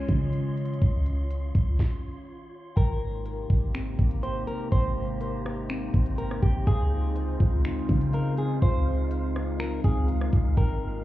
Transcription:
Already playing: ambient pad D#3 G#3 C#4 F4 C#5, synth texture F4 D#5 C6
0.08 808-style bass C#3, kick, closed hi-hat
0.33 closed hi-hat
0.57 closed hi-hat
0.66 closed hi-hat
0.74 closed hi-hat
0.82 808-style bass C#2, synth texture C#5, kick, closed hi-hat
1.06 closed hi-hat
1.31 closed hi-hat
1.55 808-style bass C#2, kick, closed hi-hat
1.79 kick, snare
2.76 808-style bass G#1, ambient pad C3 G#3 A#3 D#4 G4, synth texture G4 C5 A#5, clean electric guitar A#4, synth keys G5, kick, closed hi-hat
3.26 synth keys A#4, closed hi-hat
3.50 808-style bass G#1, synth keys G4, kick
3.74 synth keys C4, finger snap, closed hi-hat
3.98 808-style bass G#1, synth keys A#3, kick, closed hi-hat
4.11 closed hi-hat
4.23 clean electric guitar C5, synth keys G5, closed hi-hat
4.47 clean electric guitar A#4, closed hi-hat
4.72 808-style bass G#1, clean electric guitar C5, synth keys G5, kick, closed hi-hat
5.21 synth keys A#4, closed hi-hat
5.45 synth keys G4, cross-stick
5.69 synth keys C4, finger snap, closed hi-hat
5.94 808-style bass G#1, synth keys A#3, kick, closed hi-hat
6.06 closed hi-hat
6.18 clean electric guitar A#4, synth keys G5, closed hi-hat
6.31 cross-stick
6.42 808-style bass G#1, clean electric guitar G4, kick, closed hi-hat
6.67 808-style bass C#2, ambient pad C#3 C4 F4, synth texture D#4 F5, clean electric guitar G#4, synth keys F5, kick, closed hi-hat
7.16 synth keys C5, closed hi-hat
7.40 808-style bass C#2, synth keys F4, kick
7.65 synth keys D#4, finger snap, closed hi-hat
7.89 808-style bass C#3, synth keys C4, kick, closed hi-hat
8.01 closed hi-hat
8.13 clean electric guitar A#4, synth keys F5, closed hi-hat
8.38 clean electric guitar G#4, closed hi-hat
8.62 808-style bass C#2, synth texture A#4, clean electric guitar C5, synth keys F5, kick, closed hi-hat
9.11 synth keys C5, closed hi-hat
9.35 synth keys F4, cross-stick
9.59 synth keys D#4, clean electric guitar A#4, finger snap, closed hi-hat
9.84 808-style bass C#2, synth keys C4, clean electric guitar G#4, kick, closed hi-hat
10.08 synth keys F5, closed hi-hat
10.21 cross-stick
10.33 808-style bass C#2, kick, closed hi-hat
10.56 808-style bass G#1, ambient pad C3 A#3 D#4 G4, synth texture C4 G5, clean electric guitar A#4, synth keys G5, kick, closed hi-hat

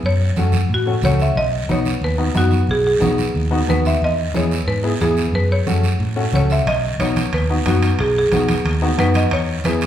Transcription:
0.03 fingered electric bass F#2, marimba C#5, long guiro
0.36 fingered electric bass F#2, upright piano A3 C#4 F#4, high conga, short guiro
0.52 high conga, short guiro
0.69 fingered electric bass A2, long guiro
0.74 marimba F#4
0.86 upright piano A3 C#4 F#4
1.02 fingered electric bass C#2, upright piano A3 C#4 F#4, marimba C#5, high conga, short guiro
1.20 marimba E5, short guiro
1.35 fingered electric bass B1, marimba D#5, long guiro
1.68 fingered electric bass B1, upright piano B3 D#4 F#4, marimba C#5, high conga, short guiro
1.85 short guiro
2.02 fingered electric bass D#2, marimba B4, long guiro
2.18 upright piano B3 D#4 F#4
2.35 fingered electric bass F#2, upright piano B3 D#4 F#4, marimba F#4, high conga, short guiro
2.51 short guiro
2.67 fingered electric bass B1, marimba G#4, long guiro
2.87 marimba G#4
3.00 fingered electric bass B1, upright piano B3 D#4 F#4, high conga, short guiro
3.18 short guiro
3.35 fingered electric bass D#2, long guiro
3.51 upright piano B3 D#4 F#4
3.68 fingered electric bass D#2, upright piano B3 D#4 F#4, marimba B4, high conga, short guiro
3.85 marimba E5, short guiro
4.02 fingered electric bass E2, marimba D#5, long guiro
4.34 fingered electric bass E2, upright piano B3 E4 G#4, marimba C#5, high conga, short guiro
4.51 short guiro
4.67 fingered electric bass G#2, marimba B4, long guiro
4.84 upright piano B3 E4 G#4
5.00 fingered electric bass E2, upright piano B3 E4 G#4, marimba G#4, high conga, short guiro
5.17 short guiro
5.32 fingered electric bass F#2, marimba B4, long guiro
5.52 marimba C#5
5.67 fingered electric bass F#2, upright piano A3 C#4 F#4, high conga, short guiro
5.83 short guiro
6.00 fingered electric bass A2, long guiro
6.16 upright piano A3 C#4 F#4
6.32 fingered electric bass C#2, upright piano A3 C#4 F#4, marimba C#5, high conga, short guiro
6.50 marimba E5, short guiro
6.66 fingered electric bass B1, marimba D#5, high timbale, long guiro
6.99 fingered electric bass B1, upright piano B3 D#4 F#4, marimba C#5, high conga, high timbale, short guiro
7.16 high conga, high timbale, short guiro
7.33 fingered electric bass D#2, marimba B4, high timbale, long guiro
7.50 upright piano B3 D#4 F#4
7.66 fingered electric bass F#2, upright piano B3 D#4 F#4, marimba F#4, high conga, high timbale, short guiro
7.82 high timbale, short guiro
7.99 fingered electric bass B1, marimba G#4, high timbale, long guiro
8.18 marimba G#4
8.32 fingered electric bass B1, upright piano B3 D#4 F#4, high conga, high timbale, short guiro
8.48 high conga, high timbale, short guiro
8.65 fingered electric bass D#2, high timbale, long guiro
8.82 upright piano B3 D#4 F#4
8.98 fingered electric bass F#2, upright piano B3 D#4 F#4, marimba B4, high conga, high timbale, short guiro
9.14 marimba D#5, high timbale, short guiro
9.30 fingered electric bass E2, marimba C#5, high timbale, long guiro
9.64 fingered electric bass E2, upright piano B3 E4 G#4, marimba B4, high conga, high timbale, short guiro
9.81 high timbale, short guiro

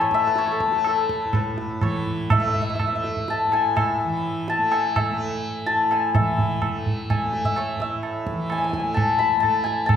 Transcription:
Already playing: tanpura A2 E3 A3, santur B4 E5 A5 B5
0.01 santur C#5
0.11 tanpura A3, santur E5, tabla ke
0.27 santur B4
0.36 santur C#5, tabla te
0.48 santur A4, tabla te
0.60 tabla ke
0.68 tanpura A3
0.72 tabla te
0.84 santur A4, tabla na
1.09 tabla ke
1.25 tanpura A2
1.33 santur B4, tabla na, tabla ge
1.58 tabla te
1.79 tanpura E3, santur C#5, tabla na, tabla ge
2.06 tabla ge
2.30 tanpura A3, santur E5, tabla na, tabla ge
2.40 santur E5
2.47 santur E5
2.54 santur E5, tabla ge
2.62 santur E5
2.70 santur E5
2.75 santur E5
2.79 santur E5, tabla na, tabla ge
2.87 santur E5
2.92 tanpura A3, santur E5
3.04 tabla te
3.16 tabla ge
3.28 santur A5, tabla te
3.47 tanpura A2
3.52 santur G#5, tabla na
3.76 santur E5, tabla na, tabla ge
4.03 tanpura E3
4.48 santur A5, tabla te
4.58 tanpura A3
4.72 santur G#5, tabla na
4.96 santur E5, tabla na, tabla ge
5.11 tanpura A3
5.66 tanpura A2, santur A5, tabla te
5.91 santur G#5, tabla na
6.15 tanpura E3, santur E5, tabla na, tabla ge
6.39 tabla ge
6.62 tabla na, tabla ge
6.69 tanpura A3
6.86 tabla ge
7.10 santur G#5, tabla na, tabla ge
7.24 tanpura A3
7.33 tabla te
7.45 santur E5, tabla ge
7.56 santur C#5, tabla na
7.77 tanpura A2, tabla ke
7.82 santur E5
8.03 tabla na
8.27 tabla ke
8.32 tanpura E3
8.50 santur G#5, tabla na
8.58 santur G#5
8.64 santur G#5
8.69 santur G#5, tabla ke
8.74 santur G#5
8.80 tanpura A3, santur G#5
8.94 santur A5, tabla na, tabla ge
9.19 santur B5, tabla te
9.37 tanpura A3, santur A5
9.43 tabla na, tabla ge
9.64 santur G#5, tabla te
9.86 santur A5, tabla na, tabla ge
9.91 tanpura A2

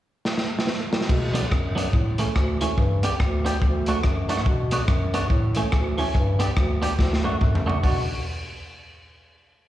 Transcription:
0.25 snare
0.38 snare
0.59 snare
0.67 snare
0.93 snare
1.01 snare
1.09 bass clarinet B2, kick, crash
1.34 clean electric guitar F#3 B3 D4, closed hi-hat
1.51 bass clarinet F#2, kick, cross-stick
1.75 clean electric guitar F#3 B3 D4, closed hi-hat
1.93 bass clarinet A2, kick
2.18 clean electric guitar E3 A3 C#4, closed hi-hat
2.36 bass clarinet D2, kick, cross-stick
2.61 clean electric guitar E3 A3 C#4, closed hi-hat
2.78 bass clarinet G2, kick
3.03 clean electric guitar B3 D4 G4, closed hi-hat
3.20 bass clarinet D2, kick, cross-stick
3.45 clean electric guitar B3 D4 G4, closed hi-hat
3.62 bass clarinet D2, kick
3.86 clean electric guitar A3 D4 F#4, closed hi-hat
4.04 bass clarinet F#2, kick, cross-stick
4.29 clean electric guitar A3 D4 F#4, closed hi-hat
4.37 cross-stick
4.46 bass clarinet B2, kick
4.71 clean electric guitar B3 D4 F#4, closed hi-hat
4.88 bass clarinet F#2, kick, cross-stick
5.14 clean electric guitar B3 D4 F#4, closed hi-hat
5.30 bass clarinet A2, kick
5.55 clean electric guitar E3 A3 C#4, closed hi-hat
5.72 bass clarinet D2, kick, cross-stick
5.98 clean electric guitar E3 A3 C#4, open hi-hat
6.15 bass clarinet G2, kick, hi-hat pedal
6.39 clean electric guitar B3 D4 G4, closed hi-hat
6.57 bass clarinet D2, kick, cross-stick
6.82 clean electric guitar B3 D4 G4, closed hi-hat
6.99 bass clarinet D2, kick, snare
7.13 snare
7.24 bass clarinet F#2, clean electric guitar A3 D4 F#4
7.41 bass clarinet F#2, kick, mid tom
7.55 floor tom
7.66 clean electric guitar A3 D4 F#4, floor tom
7.83 bass clarinet B2, clean electric guitar B3 D4 F#4, kick, open hi-hat

